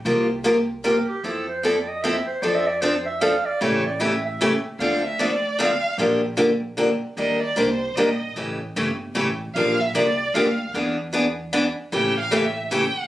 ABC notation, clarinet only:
X:1
M:3/4
L:1/16
Q:"Swing" 1/4=152
K:Dm
V:1 name="Clarinet"
z8 B2 G2 | A2 c2 d2 _e2 =e2 c2 | (3d2 e2 d2 c2 e2 f2 d2 | ^c2 d2 e2 e4- e z |
z12 | z12 | z12 | z12 |
z12 | z12 | z12 |]